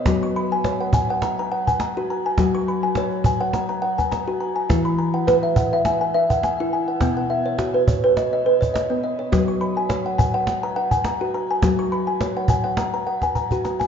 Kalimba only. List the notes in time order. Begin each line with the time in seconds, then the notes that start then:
Already playing: C#5 D#5
0.06 F#3 F#4
0.23 C#6
0.36 B5
0.52 G#5
0.65 C#5
0.81 F#5
0.94 G#5
1.10 F#5
1.23 A#5
1.39 A#5
1.52 F#5
1.67 G#5
1.81 A#5
1.97 F#4
2.10 A#5
2.26 G#5
2.38 F#3 F#4
2.55 C#6
2.68 B5
2.83 G#5
2.97 C#5
3.26 G#5
3.41 F#5
3.54 A#5
3.69 A#5
3.82 F#5
3.98 G#5
4.12 A#5
4.28 F#4
4.41 A#5
4.56 G#5
4.69 E3 E4
4.85 B5
4.99 A#5
5.14 F#5
5.27 B4
5.43 E5
5.57 F#5
5.73 E5
5.86 G#5
6.01 G#5
6.14 E5
6.30 F#5
6.44 G#5
6.60 E4
6.73 G#5
6.88 F#5
7.01 B2 B3
7.17 F#5
7.30 E5
7.46 C#5
7.58 F#4
7.74 B4
7.88 C#5
8.04 B4
8.17 D#5
8.33 D#5
8.46 B4
8.61 C#5
8.74 D#5
8.90 B3
9.04 D#5
9.19 C#5
9.32 F#3 F#4
9.48 C#6
9.61 B5
9.77 G#5
9.89 C#5
10.06 F#5
10.18 G#5
10.34 F#5
10.63 A#5
10.76 F#5
10.91 G#5
11.05 A#5
11.21 F#4
11.34 A#5
11.51 G#5
11.63 F#3 F#4
11.79 C#6
11.92 B5
12.07 G#5
12.21 C#5
12.37 F#5
12.50 G#5
12.64 F#5
12.78 A#5
12.94 A#5
13.07 F#5
13.23 G#5
13.35 A#5
13.52 F#4
13.65 A#5
13.80 G#5